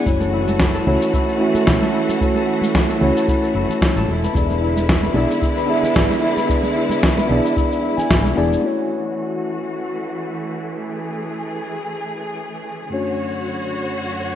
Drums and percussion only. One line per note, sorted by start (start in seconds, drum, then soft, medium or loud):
0.06 kick loud
0.06 cabasa soft
0.20 muted conga medium
0.20 cabasa soft
0.48 high conga medium
0.48 cabasa medium
0.60 kick loud
0.60 snare medium
0.60 cabasa medium
0.74 muted conga medium
0.74 high conga medium
0.74 cabasa soft
0.87 low conga medium
1.02 cabasa medium
1.14 kick loud
1.14 cabasa medium
1.29 cabasa soft
1.55 low conga medium
1.55 cabasa medium
1.67 kick loud
1.67 snare medium
1.67 cabasa medium
1.82 high conga medium
1.82 cabasa soft
2.09 high conga medium
2.09 cabasa medium
2.21 kick medium
2.21 cabasa soft
2.34 muted conga medium
2.34 cabasa soft
2.62 high conga medium
2.62 cabasa medium
2.75 kick loud
2.75 snare medium
2.75 cabasa soft
2.89 muted conga medium
2.89 high conga medium
2.89 cabasa soft
3.02 low conga medium
3.17 cabasa medium
3.28 kick medium
3.28 cabasa medium
3.43 cabasa soft
3.69 low conga medium
3.69 cabasa medium
3.81 kick loud
3.81 snare medium
3.81 cabasa soft
3.96 muted conga soft
3.96 high conga medium
3.96 cabasa soft
4.24 high conga medium
4.24 cabasa medium
4.35 kick loud
4.35 cabasa soft
4.50 muted conga medium
4.50 cabasa soft
4.77 high conga medium
4.77 cabasa medium
4.88 kick medium
4.88 snare medium
4.88 cabasa soft
5.03 muted conga soft
5.03 high conga medium
5.03 cabasa soft
5.14 low conga medium
5.31 cabasa medium
5.42 kick medium
5.42 cabasa medium
5.57 cabasa soft
5.83 low conga medium
5.83 cabasa medium
5.96 kick medium
5.96 snare medium
5.96 cabasa soft
6.10 high conga medium
6.10 cabasa soft
6.37 high conga medium
6.37 cabasa medium
6.49 kick loud
6.49 cabasa medium
6.63 muted conga medium
6.63 cabasa soft
6.90 high conga medium
6.90 cabasa medium
7.03 kick loud
7.03 snare medium
7.03 cabasa soft
7.17 muted conga medium
7.17 high conga medium
7.17 cabasa soft
7.30 low conga loud
7.46 cabasa medium
7.57 kick medium
7.57 cabasa medium
7.72 cabasa soft
7.98 low conga medium
7.98 cabasa medium
8.10 kick medium
8.10 snare loud
8.10 cabasa soft
8.24 muted conga soft
8.24 high conga medium
8.24 cabasa soft
8.51 high conga medium
8.51 cabasa medium